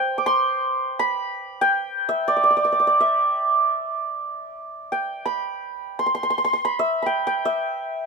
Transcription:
0.00 1.05 C5 soft
0.00 0.22 D5 medium
0.00 1.61 G5 medium
0.18 1.80 D6 medium
0.26 1.05 C6 medium
0.99 2.80 B5 medium
1.61 3.68 G5 medium
2.09 3.00 E5 medium
2.28 2.36 D5 medium
2.36 2.43 D5 medium
2.43 2.50 D5 soft
2.50 2.56 D5 soft
2.57 2.64 D5 medium
2.65 2.72 D5 medium
2.72 2.79 D5 soft
2.80 2.87 D5 soft
2.87 5.33 D5 medium
3.00 5.31 E5 medium
4.92 6.99 G5 medium
5.26 6.05 B5 medium
5.99 6.06 C6 medium
6.06 6.14 C6 medium
6.15 6.23 C6 medium
6.23 6.30 C6 medium
6.30 6.37 C6 medium
6.38 6.44 C6 medium
6.44 6.53 C6 medium
6.53 6.71 C6 medium
6.65 7.02 B5 medium
6.79 7.45 E5 medium
7.02 7.26 G5 medium
7.02 8.06 B5 medium
7.27 8.06 G5 medium
7.45 8.06 E5 medium

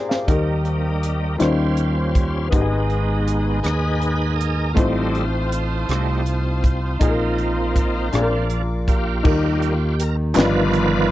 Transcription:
0.00 0.30 A#2 soft
0.00 0.22 D4 soft
0.00 0.30 F4 soft
0.00 0.28 G4 soft
0.00 0.29 G#4 soft
0.00 0.30 A#4 medium
0.00 0.10 C5 medium
0.00 0.26 D5 medium
0.00 0.30 D5 soft
0.00 0.26 F5 medium
0.00 1.37 A#5 medium
0.00 0.26 D6 medium
0.09 0.45 C5 soft
0.09 0.45 F5 soft
0.09 snare medium
0.27 1.36 D#2 medium
0.27 1.36 D#3 medium
0.27 1.36 G3 soft
0.27 1.36 A#3 soft
0.27 1.38 D#4 medium
0.27 1.37 D#4 soft
0.27 1.40 G4 medium
0.27 1.41 A#4 medium
0.27 1.39 D#5 soft
0.27 2.49 G5 medium
0.27 1.39 D#6 medium
0.27 kick medium
0.27 closed hi-hat medium
0.65 closed hi-hat soft
1.03 closed hi-hat medium
1.38 2.49 D#2 medium
1.38 2.48 D#3 medium
1.38 2.51 G3 medium
1.38 2.48 G3 soft
1.38 2.52 C#4 medium
1.38 2.49 C#4 soft
1.38 2.50 D#4 medium
1.38 2.52 F4 medium
1.38 2.49 F4 soft
1.38 2.48 C5 soft
1.38 2.53 C5 medium
1.38 2.51 F5 medium
1.38 2.51 C6 medium
1.38 closed hi-hat medium
1.42 cross-stick medium
1.77 closed hi-hat soft
2.15 kick medium
2.15 closed hi-hat soft
2.49 3.60 G#1 medium
2.49 3.60 G#2 medium
2.49 3.59 G#3 soft
2.49 4.71 B3 medium
2.49 3.60 B3 soft
2.49 3.60 D#4 soft
2.49 4.72 D#4 medium
2.49 4.74 G#5 medium
2.49 8.09 D#6 medium
2.49 kick medium
2.49 closed hi-hat medium
2.54 2.60 G4 soft
2.54 4.75 D#5 medium
2.61 4.77 G#4 medium
2.90 closed hi-hat soft
3.28 closed hi-hat medium
3.63 4.72 D#2 medium
3.63 4.72 D#4 medium
3.63 4.72 G#4 medium
3.63 4.34 B4 medium
3.63 cross-stick medium
3.63 closed hi-hat medium
4.02 closed hi-hat soft
4.36 4.76 A#4 medium
4.41 closed hi-hat soft
4.73 5.85 A1 medium
4.73 5.84 A2 soft
4.73 5.25 G3 soft
4.73 5.25 A3 soft
4.73 6.95 A3 soft
4.73 8.45 C4 soft
4.73 6.96 C4 soft
4.73 5.25 D#4 soft
4.73 6.97 D#4 medium
4.73 8.44 F4 medium
4.73 6.99 F5 medium
4.73 6.98 A5 medium
4.73 6.98 C6 medium
4.73 kick medium
4.73 closed hi-hat medium
4.78 6.97 F4 soft
4.78 6.98 C5 medium
5.15 closed hi-hat soft
5.52 closed hi-hat medium
5.89 6.97 C2 medium
5.89 6.22 G3 soft
5.89 6.23 A3 soft
5.89 6.23 D#4 soft
5.89 cross-stick medium
5.89 closed hi-hat medium
6.26 closed hi-hat soft
6.64 kick medium
6.64 closed hi-hat soft
6.99 8.09 A#1 medium
6.99 8.08 A#2 medium
6.99 8.08 F3 soft
6.99 8.09 A#3 soft
6.99 8.12 D#4 medium
6.99 8.09 D#4 soft
6.99 8.12 F4 medium
6.99 7.08 G#4 medium
6.99 8.12 D#5 medium
6.99 9.23 F5 medium
6.99 9.23 A#5 medium
6.99 kick medium
6.99 closed hi-hat medium
7.08 8.16 A#4 medium
7.38 closed hi-hat soft
7.76 kick medium
7.76 closed hi-hat medium
8.12 9.21 A#1 medium
8.12 9.21 A#2 medium
8.12 8.62 F3 soft
8.12 8.63 A#3 soft
8.12 9.24 D4 medium
8.12 8.63 D4 soft
8.12 9.25 F4 medium
8.12 8.20 G#4 medium
8.12 9.24 D5 medium
8.12 9.24 D6 medium
8.12 cross-stick medium
8.12 closed hi-hat medium
8.21 9.24 A#4 medium
8.50 closed hi-hat soft
8.88 9.24 A#3 soft
8.88 9.95 F4 soft
8.88 10.03 G4 medium
8.88 kick medium
8.88 closed hi-hat soft
9.23 10.32 D#2 medium
9.23 9.74 D#3 medium
9.23 10.32 D#3 medium
9.23 9.74 G3 soft
9.23 9.74 A#3 medium
9.23 10.34 D#4 medium
9.23 10.36 G4 medium
9.23 10.37 A#4 medium
9.23 kick medium
9.23 crash medium
9.62 closed hi-hat soft
10.00 10.16 A#4 medium
10.00 closed hi-hat medium
10.34 11.11 G1 loud
10.34 11.11 G2 medium
10.34 11.11 D#3 medium
10.34 11.11 F3 soft
10.34 11.11 G3 medium
10.34 11.11 B3 medium
10.34 11.11 D4 medium
10.34 11.11 D#4 medium
10.34 11.11 F4 medium
10.34 11.11 B4 medium
10.34 clap medium
10.34 closed hi-hat medium
10.38 11.11 F4 medium
10.38 11.11 D5 medium
10.38 snare loud
10.73 closed hi-hat medium

